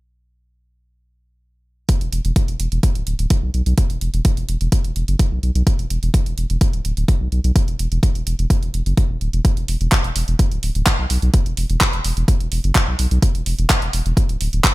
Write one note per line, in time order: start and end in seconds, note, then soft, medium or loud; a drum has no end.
1.89 kick loud
1.89 closed hi-hat medium
2.01 2.08 E1 medium
2.01 closed hi-hat soft
2.12 2.20 E1 medium
2.12 closed hi-hat medium
2.25 2.32 E1 medium
2.25 closed hi-hat soft
2.36 kick loud
2.36 closed hi-hat medium
2.48 2.56 E1 medium
2.48 closed hi-hat soft
2.60 2.67 E1 loud
2.60 closed hi-hat medium
2.72 2.79 E1 medium
2.72 closed hi-hat soft
2.83 kick loud
2.83 closed hi-hat medium
2.95 3.03 D1 medium
2.95 closed hi-hat soft
3.07 3.15 D1 loud
3.07 closed hi-hat medium
3.19 3.26 D1 medium
3.19 closed hi-hat soft
3.30 kick loud
3.30 closed hi-hat medium
3.43 3.50 B1 medium
3.54 3.62 B1 medium
3.54 closed hi-hat soft
3.66 3.74 B1 medium
3.66 closed hi-hat soft
3.78 kick loud
3.78 closed hi-hat medium
3.90 3.97 E1 medium
3.90 closed hi-hat soft
4.01 4.09 E1 medium
4.01 closed hi-hat medium
4.14 4.21 E1 medium
4.14 closed hi-hat soft
4.25 kick loud
4.25 closed hi-hat medium
4.37 4.44 E1 medium
4.37 closed hi-hat soft
4.48 4.56 E1 loud
4.48 closed hi-hat medium
4.61 4.68 E1 medium
4.61 closed hi-hat soft
4.72 kick loud
4.72 closed hi-hat medium
4.85 4.92 E1 medium
4.85 closed hi-hat soft
4.96 5.04 E1 loud
4.96 closed hi-hat medium
5.08 5.15 F#1 medium
5.08 closed hi-hat soft
5.19 kick loud
5.19 closed hi-hat medium
5.32 5.39 B1 medium
5.43 5.51 B1 loud
5.43 closed hi-hat soft
5.55 5.63 B1 medium
5.55 closed hi-hat soft
5.67 kick loud
5.67 closed hi-hat medium
5.79 5.86 E1 medium
5.79 closed hi-hat soft
5.90 5.98 E1 medium
5.90 closed hi-hat medium
6.03 6.10 E1 medium
6.03 closed hi-hat soft
6.14 kick loud
6.14 closed hi-hat medium
6.26 6.34 E1 medium
6.26 closed hi-hat soft
6.38 6.46 E1 loud
6.38 closed hi-hat medium
6.50 6.57 E1 medium
6.50 closed hi-hat soft
6.61 kick loud
6.61 closed hi-hat medium
6.73 6.81 D1 medium
6.73 closed hi-hat soft
6.85 6.93 D1 loud
6.85 closed hi-hat medium
6.97 7.04 D1 medium
6.97 closed hi-hat soft
7.08 kick loud
7.08 closed hi-hat medium
7.21 7.28 B1 medium
7.32 7.40 B1 loud
7.32 closed hi-hat soft
7.44 7.52 B1 medium
7.44 closed hi-hat soft
7.56 kick loud
7.56 closed hi-hat medium
7.68 7.75 E1 medium
7.68 closed hi-hat soft
7.79 7.87 E1 medium
7.79 closed hi-hat medium
7.92 7.99 E1 medium
7.92 closed hi-hat soft
8.03 kick loud
8.03 closed hi-hat medium
8.15 8.23 E1 medium
8.15 closed hi-hat soft
8.27 8.35 E1 loud
8.27 closed hi-hat medium
8.39 8.46 E1 medium
8.39 closed hi-hat soft
8.50 kick loud
8.50 closed hi-hat medium
8.63 8.70 E1 medium
8.63 closed hi-hat soft
8.74 8.82 E1 loud
8.74 closed hi-hat medium
8.86 8.93 F#1 medium
8.86 closed hi-hat soft
8.97 kick loud
8.97 closed hi-hat medium
9.10 9.17 E1 medium
9.21 9.29 D1 loud
9.21 closed hi-hat soft
9.33 9.41 E1 medium
9.33 closed hi-hat soft
9.45 kick loud
9.45 closed hi-hat medium
9.57 9.64 E1 medium
9.57 closed hi-hat soft
9.68 9.76 E1 medium
9.68 open hi-hat medium
9.81 9.88 E1 medium
9.81 closed hi-hat soft
9.92 kick loud
9.92 clap loud
9.92 closed hi-hat medium
10.04 10.11 E1 medium
10.04 closed hi-hat soft
10.16 10.23 E1 loud
10.16 open hi-hat loud
10.28 10.35 E1 medium
10.28 closed hi-hat soft
10.39 kick loud
10.39 closed hi-hat medium
10.51 10.59 D1 medium
10.51 closed hi-hat soft
10.63 10.71 D1 loud
10.63 open hi-hat loud
10.75 10.82 D1 medium
10.75 closed hi-hat soft
10.86 kick loud
10.86 clap loud
10.86 closed hi-hat medium
10.99 11.06 B1 medium
11.10 11.18 B1 medium
11.10 open hi-hat loud
11.22 11.30 B1 medium
11.22 closed hi-hat soft
11.34 kick loud
11.34 closed hi-hat medium
11.46 11.53 E1 medium
11.46 closed hi-hat soft
11.57 11.65 E1 medium
11.57 open hi-hat medium
11.70 11.77 E1 medium
11.70 closed hi-hat soft
11.81 kick loud
11.81 clap loud
11.81 closed hi-hat medium
11.93 12.01 E1 medium
11.93 closed hi-hat soft
12.04 12.12 E1 loud
12.04 open hi-hat loud
12.17 12.24 E1 medium
12.17 closed hi-hat soft
12.28 kick loud
12.28 closed hi-hat medium
12.40 12.48 E1 medium
12.40 closed hi-hat soft
12.52 12.60 E1 loud
12.52 open hi-hat medium
12.64 12.71 F#1 medium
12.64 closed hi-hat soft
12.75 kick loud
12.75 clap loud
12.75 closed hi-hat medium
12.88 12.95 B1 medium
12.99 13.07 B1 medium
12.99 open hi-hat medium
13.11 13.19 B1 medium
13.11 closed hi-hat soft
13.22 kick loud
13.22 closed hi-hat medium
13.35 13.42 E1 medium
13.35 closed hi-hat soft
13.46 13.54 E1 medium
13.46 open hi-hat medium
13.59 13.66 E1 medium
13.59 closed hi-hat soft
13.70 kick loud
13.70 clap loud
13.70 closed hi-hat loud
13.82 13.89 E1 medium
13.82 closed hi-hat soft
13.93 14.01 E1 loud
13.93 open hi-hat loud
14.06 14.13 E1 medium
14.06 closed hi-hat soft
14.17 kick loud
14.17 closed hi-hat medium
14.29 14.37 D1 medium
14.29 closed hi-hat soft
14.41 14.49 D1 loud
14.41 open hi-hat medium
14.53 14.60 D1 medium
14.53 closed hi-hat soft
14.64 kick loud
14.64 clap loud
14.64 closed hi-hat medium